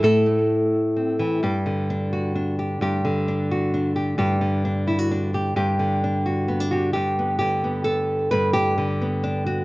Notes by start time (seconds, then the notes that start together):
0.03 A2 A4
0.26 A3
0.97 C4
1.19 E3
1.43 G2 G4
1.66 D3
1.90 D4
2.13 F#4
2.35 D4
2.59 G4
2.81 G2 G4
3.05 D3
3.28 D4
3.51 F#4
3.74 D4
3.96 G4
4.18 G2 G4
4.41 D3
4.65 D4
4.87 E4
4.98 F#4
5.11 D4
5.34 G4
5.56 G2 G4
5.79 D3
6.04 D4
6.26 F#4
6.48 B3
6.60 D4
6.71 F#4 G4
6.93 G2 G4
7.19 B3
7.39 D3 G4
7.64 B3
7.84 A4
8.31 G2 B4
8.53 G4
8.78 D3
9.01 B3
9.24 D4
9.46 F#4